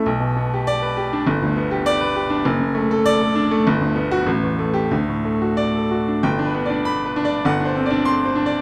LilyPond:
<<
  \new Staff \with { instrumentName = "Grand piano" } { \time 2/4 \key d \major \tempo 4 = 99 << { r4 d''8 r8 | r4 d''8 r8 | r4 d''8 r8 | r8. fis'16 r8. g'16 |
r4 d''8 r8 | \key g \major r4 b''8 r8 | r4 c'''8 r8 | } \\ { r2 | r2 | r2 | r2 |
r2 | \tuplet 3/2 { g''8 b'8 d''8~ d''8 b'8 d''8 } | \tuplet 3/2 { fis''8 c''8 d''8~ d''8 c''8 d''8 } | } >> }
  \new Staff \with { instrumentName = "Grand piano" } { \time 2/4 \key d \major b,,16 b,16 b16 g'8 b'16 g'16 d'16 | g,,16 d,16 b16 g'8 b'16 g'16 d'16 | fis,,16 fis,16 a16 a'8 a'16 d'16 a16 | g,,16 d,16 b8 a,,16 e,16 a8 |
d,16 a,16 a16 fis'8 a'16 fis'16 d'16 | \key g \major g,,16 d'16 b16 d'8 r16 d'8 | g,,16 d'16 c'16 d'8 r16 d'8 | }
>>